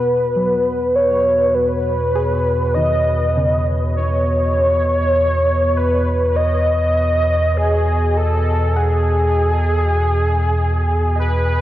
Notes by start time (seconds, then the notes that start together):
Already playing: E2 B2 B3 B4
0.36 F#3
0.96 C#5
1.55 B4
2.15 G#4
2.74 D#3 D#5
3.37 C#3
3.96 C#5
5.77 B4
6.36 D#5
7.57 G#4
8.17 A4
8.76 G#4 F#5
11.16 B4 D#5